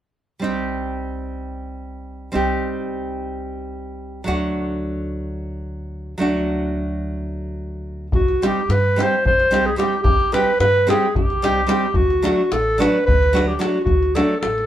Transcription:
0.39 2.31 C2 medium
0.39 2.29 G3 soft
0.39 2.31 C4 soft
0.39 2.31 D#4 soft
0.44 2.32 G4 medium
2.32 4.23 C2 medium
2.32 4.22 G3 medium
2.32 4.22 C4 medium
2.32 4.23 D#4 soft
2.32 4.24 G4 medium
4.24 6.16 D2 medium
4.24 6.14 F#3 medium
4.24 6.15 A3 soft
4.24 6.15 D4 soft
4.24 6.16 F#4 medium
6.18 8.09 D2 medium
6.18 8.07 F#3 medium
6.18 8.07 A3 soft
6.18 8.08 D4 medium
6.18 8.09 F#4 medium
8.12 8.46 C2 medium
8.12 8.48 F#4 medium
8.12 davul low medium
8.28 davul high soft
8.42 8.59 G3 soft
8.42 8.59 C4 soft
8.42 8.60 D#4 soft
8.42 8.60 G4 medium
8.42 davul high medium
8.47 8.72 G4 medium
8.69 9.02 G2 medium
8.69 9.05 B4 loud
8.69 davul high medium
8.96 9.14 G3 medium
8.96 9.15 C4 medium
8.96 9.15 D#4 soft
8.96 9.15 G4 medium
9.00 9.26 C5 medium
9.00 davul high medium
9.25 9.72 C2 medium
9.25 9.68 C5 medium
9.25 davul low medium
9.40 davul high soft
9.51 9.68 G3 medium
9.51 9.68 C4 medium
9.51 9.69 D#4 medium
9.51 9.69 G4 medium
9.51 davul high medium
9.66 9.77 G#4 medium
9.76 9.94 G3 soft
9.76 9.94 C4 soft
9.76 9.95 D#4 medium
9.76 10.01 G4 medium
9.76 9.95 G4 medium
9.76 davul high medium
10.03 10.38 C2 medium
10.03 10.34 G4 medium
10.03 davul low medium
10.20 davul high soft
10.32 10.50 G3 soft
10.32 10.50 C4 medium
10.32 10.50 D#4 medium
10.32 10.50 G4 medium
10.32 10.59 B4 medium
10.32 davul high medium
10.60 10.93 G2 medium
10.60 10.91 B4 medium
10.60 davul high medium
10.87 11.05 G3 medium
10.87 11.05 C4 medium
10.87 11.06 D#4 medium
10.87 11.06 G4 medium
10.87 11.15 G#4 medium
10.87 davul high medium
11.15 11.64 C2 medium
11.15 11.97 G4 medium
11.15 davul low medium
11.30 davul high soft
11.42 11.60 G3 medium
11.42 11.60 C4 medium
11.42 11.60 D#4 medium
11.42 11.61 G4 medium
11.42 davul high medium
11.67 11.85 G3 medium
11.67 11.85 C4 soft
11.67 11.85 D#4 soft
11.67 11.86 G4 medium
11.67 davul high medium
11.94 12.28 D2 medium
11.94 12.25 F#4 medium
11.94 davul low medium
12.10 davul high soft
12.22 12.41 F#3 medium
12.22 12.41 A3 medium
12.22 12.41 D4 medium
12.22 12.41 F#4 medium
12.22 12.54 F#4 medium
12.22 davul high medium
12.52 12.85 A1 medium
12.52 12.82 A4 medium
12.52 davul high medium
12.78 12.97 F#3 medium
12.78 12.97 A3 medium
12.78 12.97 D4 medium
12.78 12.98 F#4 medium
12.78 13.05 B4 medium
12.78 davul high medium
13.06 13.55 D2 medium
13.06 13.49 B4 medium
13.06 davul low medium
13.23 davul high soft
13.33 13.51 F#3 medium
13.33 13.51 A3 medium
13.33 13.51 D4 medium
13.33 13.52 F#4 medium
13.33 davul high medium
13.48 13.61 G4 medium
13.59 13.77 F#3 medium
13.59 13.77 A3 soft
13.59 13.77 D4 soft
13.59 13.83 F#4 medium
13.59 13.77 F#4 medium
13.59 davul high medium
13.84 14.21 D2 medium
13.84 14.17 F#4 medium
13.84 davul low medium
14.03 davul high soft
14.15 14.33 F#3 medium
14.15 14.33 A3 medium
14.15 14.34 D4 soft
14.15 14.34 F#4 medium
14.15 14.39 A4 medium
14.15 davul high medium
14.40 14.66 A1 medium
14.40 14.66 A4 medium
14.40 davul high medium
14.58 davul high soft

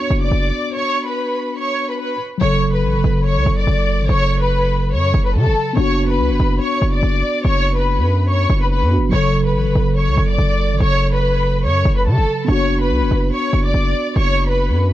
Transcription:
0.00 2.14 B3 medium
0.00 2.16 D4 medium
0.00 2.18 F#4 medium
0.00 0.20 C#5 medium
0.00 0.20 C#6 medium
0.10 0.31 F#1 loud
0.22 0.70 D5 medium
0.22 0.71 D6 medium
0.31 0.52 F#1 loud
0.73 1.04 C#5 loud
0.73 1.04 C#6 medium
1.05 1.54 B4 medium
1.05 1.55 B5 medium
1.57 1.87 C#5 medium
1.57 1.88 C#6 medium
1.89 1.98 B4 medium
1.89 1.99 B5 medium
1.99 2.18 B4 medium
1.99 2.18 B5 medium
2.38 2.85 F#1 loud
2.38 5.73 C#3 medium
2.38 5.71 F#3 medium
2.38 2.71 C#5 loud
2.42 5.75 A4 medium
2.42 2.72 C#6 medium
2.73 3.22 B4 medium
2.73 3.22 B5 medium
2.83 2.96 A1 loud
2.94 3.04 F#1 loud
3.04 3.38 F#1 loud
3.25 3.55 C#5 medium
3.25 3.56 C#6 medium
3.36 3.46 C#2 loud
3.46 3.66 F#1 loud
3.57 4.06 D5 medium
3.57 4.06 D6 medium
3.67 4.01 F#1 loud
3.99 4.09 G#1 loud
4.09 4.94 F#1 loud
4.09 4.39 C#5 loud
4.09 4.40 C#6 medium
4.41 4.90 B4 medium
4.41 4.90 B5 medium
4.93 5.13 F#2 loud
4.93 5.23 C#5 medium
4.93 5.24 C#6 medium
5.14 5.36 F#1 loud
5.25 5.34 B4 medium
5.25 5.34 B5 medium
5.35 5.48 C#3 loud
5.35 5.74 A4 medium
5.35 5.75 A5 medium
5.46 5.55 F#1 loud
5.73 6.20 F#1 loud
5.73 8.86 B3 medium
5.73 8.88 D4 medium
5.73 6.07 C#5 loud
5.78 8.89 F#4 medium
5.78 6.07 C#6 medium
6.09 6.58 B4 medium
6.09 6.58 B5 medium
6.19 6.31 C#2 loud
6.30 6.39 F#1 loud
6.40 6.60 F#1 loud
6.61 6.91 C#5 medium
6.61 6.91 C#6 medium
6.82 7.02 F#1 loud
6.93 7.42 D5 medium
6.93 7.42 D6 medium
7.03 7.23 F#1 loud
7.45 7.99 F#1 loud
7.45 7.75 C#5 loud
7.45 7.75 C#6 medium
7.77 8.26 B4 medium
7.77 8.26 B5 medium
7.98 8.47 F#2 loud
8.29 8.59 C#5 medium
8.29 8.59 C#6 medium
8.50 8.83 F#1 loud
8.61 8.70 B4 medium
8.61 8.70 B5 medium
8.71 8.89 B4 medium
8.71 8.90 B5 medium
8.82 8.99 F#2 loud
8.90 9.12 B3 medium
8.90 9.12 D4 soft
8.90 9.13 F#4 medium
8.97 9.12 F#1 loud
9.09 9.56 F#1 loud
9.09 12.44 C#3 medium
9.09 12.42 F#3 medium
9.09 9.43 C#5 loud
9.13 12.46 A4 medium
9.13 9.43 C#6 medium
9.45 9.93 B4 medium
9.45 9.94 B5 medium
9.54 9.67 A1 loud
9.66 9.75 F#1 loud
9.75 10.09 F#1 loud
9.96 10.27 C#5 medium
9.96 10.27 C#6 medium
10.08 10.17 C#2 loud
10.17 10.38 F#1 loud
10.28 10.77 D5 medium
10.28 10.78 D6 medium
10.38 10.72 F#1 loud
10.71 10.80 G#1 loud
10.80 11.66 F#1 loud
10.80 11.11 C#5 loud
10.80 11.11 C#6 medium
11.12 11.61 B4 medium
11.12 11.62 B5 medium
11.64 11.84 F#2 loud
11.64 11.95 C#5 medium
11.64 11.95 C#6 medium
11.85 12.08 F#1 loud
11.96 12.05 B4 medium
11.96 12.06 B5 medium
12.06 12.19 C#3 loud
12.06 12.46 A4 medium
12.06 12.46 A5 medium
12.17 12.27 F#1 loud
12.45 12.92 F#1 loud
12.45 14.93 B3 medium
12.45 14.93 D4 medium
12.45 12.78 C#5 loud
12.49 14.93 F#4 medium
12.49 12.79 C#6 medium
12.80 13.29 B4 medium
12.80 13.29 B5 medium
12.90 13.03 C#2 loud
13.01 13.11 F#1 loud
13.11 13.31 F#1 loud
13.32 13.62 C#5 medium
13.32 13.63 C#6 medium
13.53 13.73 F#1 loud
13.64 14.13 D5 medium
13.64 14.13 D6 medium
13.74 13.94 F#1 loud
14.16 14.71 F#1 loud
14.16 14.46 C#5 loud
14.16 14.47 C#6 medium
14.48 14.93 B4 medium
14.48 14.93 B5 medium
14.69 14.93 F#2 loud

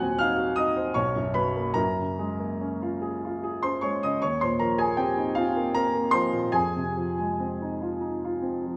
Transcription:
0.00 0.91 D#2 medium
0.00 0.98 A#2 soft
0.00 0.11 F#3 soft
0.00 0.31 C4 soft
0.00 0.16 F#5 medium
0.00 0.98 G#5 medium
0.00 0.18 F#6 medium
0.00 0.97 G#6 medium
0.19 0.50 D#4 soft
0.19 0.55 F5 medium
0.19 0.57 F6 medium
0.37 0.68 F#4 soft
0.56 0.88 D#4 soft
0.56 0.93 D#5 medium
0.56 0.95 D#6 medium
0.76 0.96 C5 soft
0.94 1.74 B1 soft
0.94 1.32 C#5 medium
0.94 1.35 C#6 medium
1.16 1.48 F#2 soft
1.34 1.68 F#3 soft
1.34 1.73 B4 medium
1.34 1.76 B5 medium
1.56 1.77 A#3 soft
1.74 4.14 F#2 medium
1.74 3.35 A#4 medium
1.74 3.38 A#5 medium
1.98 2.31 C#3 soft
2.19 2.51 G#3 soft
2.40 2.72 A#3 soft
2.61 2.92 C#4 soft
2.82 3.13 F4 soft
3.02 3.33 G#4 soft
3.25 3.54 F4 soft
3.43 3.73 G#4 soft
3.63 3.93 C#4 soft
3.63 3.80 C5 medium
3.63 3.81 C6 medium
3.81 4.13 G#3 soft
3.81 3.99 C#5 medium
3.81 4.00 C#6 medium
4.03 4.21 C#3 soft
4.03 4.21 D#5 medium
4.03 4.21 D#6 medium
4.22 6.51 D#2 soft
4.22 4.39 C#5 medium
4.22 4.40 C#6 medium
4.41 4.72 A#2 soft
4.41 4.59 C5 soft
4.41 4.60 C6 medium
4.59 4.91 F3 soft
4.59 4.78 A#4 soft
4.59 4.79 A#5 medium
4.78 5.09 A#3 soft
4.78 4.96 G#4 soft
4.78 4.98 G#5 medium
4.97 5.28 C4 soft
4.97 5.33 G4 medium
4.97 5.35 G5 medium
5.17 5.47 D#4 soft
5.35 5.67 C4 soft
5.35 5.71 F4 medium
5.35 5.73 F5 medium
5.56 5.86 A#3 soft
5.74 6.06 C4 medium
5.74 6.11 A#4 medium
5.74 6.13 A#5 medium
5.94 6.25 A#3 soft
6.11 6.45 F3 soft
6.11 6.51 C5 medium
6.11 6.53 C6 medium
6.33 6.54 A#2 soft
6.52 8.77 F2 soft
6.52 8.19 G#4 medium
6.52 8.22 G#5 medium
6.77 7.10 C3 soft
6.97 7.31 F3 soft
7.19 7.52 G#3 soft
7.40 7.73 C4 soft
7.62 7.94 D#4 soft
7.81 8.15 F4 soft
8.01 8.35 D#4 soft
8.24 8.57 F4 soft
8.42 8.77 C4 soft
8.66 8.77 F3 soft

